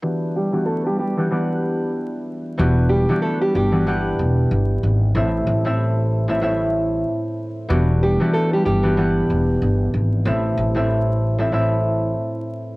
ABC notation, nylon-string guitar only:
X:1
M:4/4
L:1/16
Q:"Swing 16ths" 1/4=94
K:Em
V:1 name="Nylon-string guitar"
z2 [G,G]2 [A,A] [G,G] [G,G]8- [G,G]2 | z2 [G,G]2 [A,A] [G,G] [G,G]8- [G,G]2 | z16 | z2 [G,G]2 [A,A] [G,G] [G,G]8- [G,G]2 |
z16 |]